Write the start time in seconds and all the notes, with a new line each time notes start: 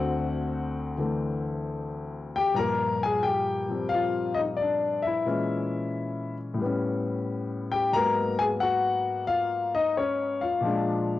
Already playing: D2 D3 C4 F#4 F#5
0.97 D3 E3 A3
2.36 G4 G5
2.54 G2 A#2 F3 A#5
2.58 A#3 A#4
3.03 G#4 G#5
3.23 G5
3.27 G4
3.68 F3 G3 C4
3.89 F5
3.94 F4
4.34 D#5
4.39 D#4
4.57 D5
4.62 D4
5.02 E5
5.07 E4
5.26 A#2 E3 G#3 C#4
6.54 A2 G3
6.62 B3 C#4
7.72 G4 G5
7.93 G#2 F#3 A#3 A#4 A#5
7.98 B3
8.39 G#4 G#5
8.60 F#4 F#5
9.27 F4 F5
9.75 D#4 D#5
9.97 C#4 C#5
10.41 F4 F5
10.61 A#2 F3 G#3
10.65 D4